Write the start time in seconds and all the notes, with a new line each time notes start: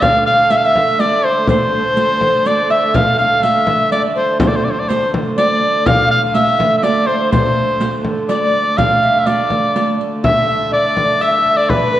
Already playing: D3 A3 C5 D5
0.01 F5, riq, frame drum
0.26 F5
0.50 E5, riq, frame drum
0.56 F5
0.64 E5
0.76 frame drum
0.99 D5, riq
1.23 C5
1.48 C5, riq, frame drum
1.97 riq, frame drum
2.21 C5, frame drum
2.46 D5, riq
2.70 E5
2.94 F5, riq, frame drum
3.18 F5, riq
3.42 E5, riq, frame drum
3.67 E5, riq, frame drum
3.91 D5, riq
4.15 C5
4.39 D3 A3 C5, riq, frame drum
4.48 D5
4.56 C5
4.65 D5
4.71 C5
4.79 D5
4.89 C5, riq, frame drum
5.14 frame drum
5.38 D5, riq
5.86 F5, riq, frame drum
6.11 F5
6.34 E5, riq, frame drum
6.59 E5, frame drum
6.78 E5
6.82 D5, riq
7.07 C5
7.31 C5, riq, frame drum
7.81 riq, frame drum
8.05 frame drum
8.29 D5, riq
8.77 F5, riq, frame drum
9.02 E5, riq, frame drum
9.19 E5
9.25 D5, riq, frame drum
9.50 riq, frame drum
9.76 riq
10.00 riq
10.23 D3 A3 E5, frame drum
10.48 E5
10.72 D5, frame drum
10.97 D5, frame drum
11.21 E5, frame drum
11.30 E5
11.38 E5
11.46 frame drum
11.53 D5 E5
11.57 D5
11.69 B4, frame drum
11.93 B4